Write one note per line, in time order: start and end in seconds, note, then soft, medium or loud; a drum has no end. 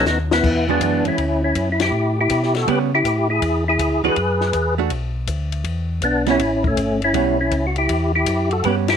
0.05 0.42 D#2 medium
0.05 0.19 B3 medium
0.05 0.18 D#4 medium
0.05 snare medium
0.05 hi-hat pedal medium
0.31 0.67 B3 medium
0.31 0.70 E4 loud
0.31 snare loud
0.43 0.79 E2 medium
0.43 kick medium
0.43 crash medium
0.69 1.16 E3 medium
0.69 1.16 G#3 medium
0.69 0.82 B3 medium
0.69 1.16 D4 medium
0.69 0.82 D4 medium
0.69 1.16 F#4 medium
0.81 1.03 F#2 medium
0.81 1.05 B3 medium
0.81 1.07 D4 medium
0.81 kick soft
0.81 hi-hat pedal soft
0.81 ride medium
1.04 1.11 F#2 soft
1.04 1.41 C#4 medium
1.04 1.43 E4 medium
1.04 ride soft
1.18 1.54 D2 loud
1.18 kick soft
1.18 ride medium
1.44 1.69 C#4 medium
1.44 1.70 E4 medium
1.55 1.91 F#2 medium
1.55 kick soft
1.55 hi-hat pedal soft
1.55 ride medium
1.72 1.81 E4 medium
1.80 2.16 E4 medium
1.80 2.19 G4 medium
1.80 snare medium
1.80 ride medium
1.92 2.28 A2 loud
2.21 2.54 E4 medium
2.21 2.57 G4 loud
2.29 2.66 B2 medium
2.29 kick soft
2.29 hi-hat pedal medium
2.29 ride medium
2.43 snare soft
2.55 2.67 F#4 medium
2.55 2.69 A4 medium
2.55 snare soft
2.55 ride soft
2.67 3.03 C#3 medium
2.67 2.89 G3 medium
2.67 2.90 B3 medium
2.67 2.90 C#4 medium
2.67 2.79 G4 medium
2.67 2.79 B4 loud
2.67 kick soft
2.67 ride medium
2.95 3.28 E4 medium
2.95 3.28 G4 loud
3.04 3.41 A2 medium
3.04 kick soft
3.04 hi-hat pedal medium
3.04 ride medium
3.30 3.64 E4 medium
3.30 3.65 G#4 medium
3.42 3.78 E2 medium
3.42 kick soft
3.42 ride medium
3.68 4.02 E4 medium
3.68 4.03 G#4 loud
3.79 4.02 D2 medium
3.79 kick soft
3.79 hi-hat pedal medium
3.79 ride medium
4.03 4.10 D2 soft
4.03 4.15 E3 medium
4.03 4.15 G#3 medium
4.03 4.15 D4 medium
4.03 4.16 F#4 medium
4.03 4.75 G#4 medium
4.03 4.75 B4 loud
4.16 4.52 F#2 loud
4.16 kick soft
4.16 ride medium
4.41 snare soft
4.53 4.90 E2 medium
4.53 kick soft
4.53 hi-hat pedal soft
4.53 ride medium
4.78 4.90 A3 medium
4.78 4.90 D4 medium
4.78 4.90 F#4 medium
4.90 5.27 B1 medium
4.90 kick soft
4.90 ride medium
5.27 5.64 D2 medium
5.27 kick soft
5.27 hi-hat pedal medium
5.27 ride medium
5.52 ride medium
5.64 6.01 E2 medium
5.64 kick soft
5.64 ride medium
6.02 6.38 B1 medium
6.02 6.26 B3 medium
6.02 6.29 D4 medium
6.02 kick soft
6.02 hi-hat pedal medium
6.02 ride medium
6.26 6.39 G3 medium
6.26 6.39 B3 medium
6.26 6.40 C#4 medium
6.26 6.63 C#4 medium
6.26 snare soft
6.26 ride soft
6.31 6.67 E4 loud
6.39 6.76 A1 medium
6.39 kick soft
6.39 ride medium
6.64 7.01 A3 medium
6.64 7.01 C#4 medium
6.64 kick medium
6.77 7.13 G1 medium
6.77 kick soft
6.77 hi-hat pedal medium
6.77 ride medium
7.02 7.38 C#4 medium
7.02 7.40 E4 loud
7.02 ride soft
7.14 7.51 B1 medium
7.14 7.37 G3 medium
7.14 7.37 B3 medium
7.14 7.37 C#4 medium
7.14 kick soft
7.14 ride medium
7.41 7.66 C#4 medium
7.41 7.66 E4 medium
7.51 7.88 C#2 medium
7.51 kick soft
7.51 hi-hat pedal soft
7.51 ride medium
7.67 7.76 F#4 medium
7.76 8.12 E4 medium
7.76 8.12 G4 medium
7.76 ride soft
7.89 8.25 E2 medium
7.89 kick soft
7.89 ride medium
8.16 8.50 E4 medium
8.16 8.53 G4 medium
8.26 8.63 F#2 medium
8.26 kick soft
8.26 hi-hat pedal medium
8.26 ride medium
8.51 8.64 F#4 medium
8.51 8.65 A4 loud
8.51 ride soft
8.64 8.97 G2 medium
8.64 8.87 G3 soft
8.64 8.87 B3 soft
8.64 8.88 C#4 medium
8.64 8.76 G4 medium
8.64 8.76 B4 loud
8.64 kick soft
8.64 ride medium
8.88 8.97 E4 medium
8.88 8.97 G4 medium
8.88 snare medium
8.88 ride medium